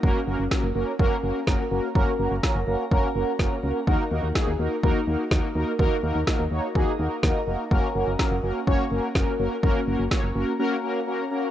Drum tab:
SD |--o---o-|--o---o-|--o---o-|--o---o-|
BD |o-o-o-o-|o-o-o-o-|o-o-o-o-|o-o-o-o-|

SD |--o---o-|--o-----|
BD |o-o-o-o-|o-o-----|